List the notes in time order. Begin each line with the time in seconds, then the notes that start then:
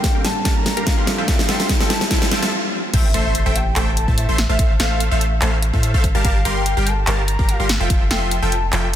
Already playing: G3 A#3 D4 F4 G4 A4 A#4 F5 G5 C6, riser
0.04 kick, snare, closed hi-hat
0.15 G3 G4 A#4 F5 G5
0.25 A5, snare, closed hi-hat
0.45 G3 G4 A#4 F5 A5, kick, snare, closed hi-hat
0.56 A#5
0.66 snare, closed hi-hat
0.77 G3 G4 A#4 F5 A#5, closed hi-hat
0.87 F5, kick, snare, closed hi-hat
0.98 G3 G4 A#4 F5 C6
1.06 F3 G3 C4 E4 F4 A4 C5, snare, closed hi-hat
1.18 F3 F4 A4 E5 F5 G5
1.26 F3 G3 C4 E4 F4 A4 E5 G5, kick, snare, closed hi-hat
1.30 A4
1.39 snare
1.49 F3 F4 A4 E5 G5 C6, snare, closed hi-hat
1.60 snare, closed hi-hat
1.69 kick, snare, closed hi-hat
1.80 F3 F4 A4 E5 G5 A5, snare
1.90 snare, closed hi-hat
2.01 snare
2.11 F3 F4 A4 E5 G5, kick, snare, closed hi-hat
2.22 snare
2.31 F3 F4 A4 E5 G5, snare, closed hi-hat
2.43 F3 F4 A4 E5 A5, snare, closed hi-hat
2.94 A1 A3 A4 C5 E5 G5, kick, closed hi-hat, crash, impact
3.14 A1 A3 A4 C5 E5 C6, closed hi-hat
3.25 E5
3.35 closed hi-hat
3.46 A1 A3 A4 C5 E5 G5
3.56 G5, closed hi-hat
3.76 A1 A3 A4 C5 E5 G5, clap, closed hi-hat
3.87 A5
3.97 closed hi-hat
4.08 A2 A3 A4 C5 E5 A5, kick
4.18 E5, closed hi-hat
4.29 A1 A3 A4 C5 E5 C6
4.38 snare, closed hi-hat
4.49 A1 A3 A4 C5 E5 F5
4.59 A3 A4 C5 E5, kick, closed hi-hat
4.80 A1 A3 A4 C5 E5 F5, snare, closed hi-hat
5.00 closed hi-hat
5.11 A1 A3 A4 C5 E5 F5
5.21 closed hi-hat
5.42 A1 A3 A4 C5 E5 F5, clap, closed hi-hat
5.63 closed hi-hat
5.73 A2 A3 A4 C5 E5 F5, kick
5.83 closed hi-hat
5.94 A1 A3 A4 C5 E5 F5, kick
6.04 kick, closed hi-hat
6.15 G1 G3 G4 A#4 F5 A5
6.25 G1 G3 G4 A#4 F5 A5, kick, closed hi-hat
6.45 G1 G3 G4 A#4 F5 C6, closed hi-hat
6.56 G5
6.66 closed hi-hat
6.77 G1 G3 G4 A#4 F5 G5
6.87 A5, closed hi-hat
7.07 G1 G3 G4 A#4 F5 A5, clap, closed hi-hat
7.18 A#5
7.28 closed hi-hat
7.39 G1 G3 G4 A#4 F5 A#5, kick
7.49 F5, closed hi-hat
7.60 G1 G3 G4 A#4 F5 C6
7.69 snare, closed hi-hat
7.80 F1 F3 F4 A4 E5 F5 G5
7.90 F3 F4, kick, closed hi-hat
8.11 F1 F3 F4 A4 E5 G5 C6, snare, closed hi-hat
8.31 closed hi-hat
8.42 F1 F3 F4 A4 E5 G5 A5
8.52 closed hi-hat
8.73 F1 F3 F4 A4 E5 G5, clap, closed hi-hat